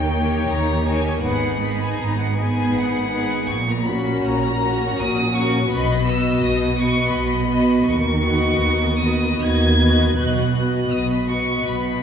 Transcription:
Already playing: double bass section D#2, cello section D#3, viola section A#3, violin section G5
0.11 viola section A#3 D#4, violin section G4 C#5
0.48 double bass section D#2, cello section D#3, violin section A#5
0.86 viola section A#3 D#4, violin section G4 C#5 G#5
1.23 double bass section G#1, cello section G#2, viola section B3 D#4, violin section G#4 B4 F#5
1.62 viola section B3 D#4, violin section G#4 B4 B5
1.82 violin section G#5
1.99 double bass section G#1, cello section G#2, violin section A#5
2.19 violin section F#5
2.36 viola section B3 D#4, violin section G#4 B4 G#5
2.73 double bass section G#1, cello section G#2, violin section F#5
3.12 viola section B3 D#4, violin section G#4 B4
3.49 double bass section A#1, cello section A#2, violin section C#6
3.68 violin section A#5
3.86 viola section C#4 F#4, violin section F#4 A#4 B5
4.23 double bass section A#1, cello section A#2, violin section A#5
4.61 viola section C#4 F#4, violin section F#4 A#4
4.97 double bass section A#1, cello section A#2, violin section D#6
5.34 viola section C#4 F#4, violin section F#4 A#4 C#6
5.70 double bass section B1, cello section B2, viola section B3 F#4, violin section B4 D#5 B5
6.06 viola section B3 F#4, violin section B4 D#5 E6
6.42 double bass section B1, cello section B2, violin section D#6
6.77 viola section B3 F#4, violin section B4 D#5 C#6
7.13 double bass section B1, cello section B2, violin section B5
7.50 viola section B3 F#4, violin section B4 D#5
7.86 double bass section D#2, cello section D#3, violin section C#6
8.23 viola section B3 F#4, violin section B4 D#5
8.60 double bass section D#2, cello section D#3
9.00 viola section B3 F#4, violin section B4 D#5 D#6
9.40 double bass section D#2, cello section D#3, violin section G#6
9.79 viola section B3 F#4, violin section B4 D#5
10.16 double bass section B1, cello section B2, viola section B3 F#4, violin section B4 D#5 F#6
10.54 viola section B3 F#4, violin section B4 D#5
10.91 double bass section B1, cello section B2, violin section D#6
11.10 violin section B5
11.28 viola section B3 F#4, violin section B4 D#5 C#6
11.65 double bass section B1, cello section B2, violin section B5

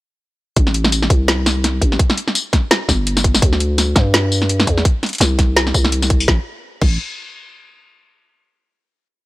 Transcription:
0.56 808-style bass A1, kick, closed hi-hat
0.67 snare
0.74 closed hi-hat
0.84 snare
0.92 closed hi-hat, tambourine
1.02 snare
1.10 808-style bass C2, kick, closed hi-hat
1.28 snare, closed hi-hat
1.46 snare, tambourine
1.64 snare, closed hi-hat
1.82 808-style bass A1, kick, closed hi-hat
1.92 snare
1.99 kick, closed hi-hat
2.10 snare
2.18 closed hi-hat
2.28 snare
2.35 closed hi-hat, tambourine
2.53 kick, snare, closed hi-hat
2.71 snare, closed hi-hat
2.89 808-style bass G1, kick, snare, tambourine
3.07 closed hi-hat
3.17 snare, tambourine
3.24 kick, closed hi-hat
3.35 snare, tambourine
3.42 808-style bass D2, kick, closed hi-hat
3.53 snare
3.60 closed hi-hat
3.78 snare, closed hi-hat, tambourine
3.96 808-style bass G2, kick, snare, closed hi-hat
4.14 snare, closed hi-hat
4.32 tambourine
4.42 snare
4.49 closed hi-hat
4.60 snare
4.67 808-style bass E2, kick, closed hi-hat
4.78 snare
4.85 kick, closed hi-hat
5.03 snare, closed hi-hat
5.06 closed hi-hat
5.09 closed hi-hat
5.13 closed hi-hat
5.15 closed hi-hat
5.18 808-style bass C2, snare, closed hi-hat
5.21 closed hi-hat, tambourine
5.39 kick, snare, closed hi-hat
5.57 snare, closed hi-hat
5.67 snare
5.74 808-style bass C2, kick, tambourine
5.84 snare
5.92 closed hi-hat
6.02 snare, tambourine
6.10 kick, closed hi-hat
6.20 tambourine
6.28 808-style bass A1, kick, snare
6.82 808-style bass A1, kick, crash

